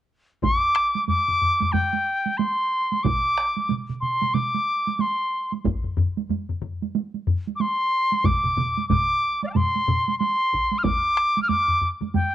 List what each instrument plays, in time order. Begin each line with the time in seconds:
0.43 piccolo D6, taiko, taiko low-mid, taiko high
0.76 taiko rim
0.95 taiko high
1.08 piccolo D6, taiko low-mid, taiko high
1.28 taiko low-mid
1.42 taiko low-mid
1.60 taiko low-mid, taiko high
1.72 piccolo G5, taiko low-mid, taiko high
1.93 taiko high
2.26 taiko high
2.37 piccolo C6, taiko high
2.92 taiko high
3.03 piccolo D6, taiko, taiko mid, taiko high
3.38 taiko rim
3.57 taiko high
3.69 taiko mid, taiko high
3.89 taiko mid
4.01 piccolo C6, taiko mid
4.22 taiko mid, taiko high
4.34 piccolo D6, taiko mid, taiko high
4.54 taiko high
4.87 taiko high
4.99 piccolo C6, taiko high
5.52 taiko high
5.64 taiko, taiko low-mid, taiko high
5.84 taiko low-mid
5.97 taiko low-mid
6.17 taiko high
6.29 taiko low-mid, taiko high
6.49 taiko low-mid
6.62 taiko low-mid
6.82 taiko high
6.95 taiko high
7.14 taiko high
7.27 taiko low-mid
7.47 taiko high
7.56 piccolo D6
7.60 piccolo C6, taiko high
8.12 taiko high
8.24 piccolo D6, taiko, taiko low-mid, taiko mid, taiko high
8.44 taiko low-mid, taiko mid
8.57 taiko low-mid, taiko mid
8.77 taiko high
8.89 piccolo D6, taiko, taiko low-mid, taiko mid, taiko high
9.43 piccolo D5 F5, taiko high
9.47 piccolo G5 A5
9.53 piccolo C6, taiko low-mid, taiko mid, taiko high
9.76 taiko high
9.88 taiko low-mid, taiko mid
10.08 taiko high
10.19 piccolo C6, taiko high
10.53 taiko
10.71 taiko high
10.78 piccolo F6
10.83 piccolo D6, taiko, taiko low-mid, taiko high
11.17 taiko rim
11.37 taiko high
11.43 piccolo F6
11.49 piccolo D6, taiko low-mid, taiko high
11.68 taiko low-mid
11.81 taiko low-mid
12.01 taiko low-mid, taiko high
12.14 piccolo G5, taiko low-mid, taiko high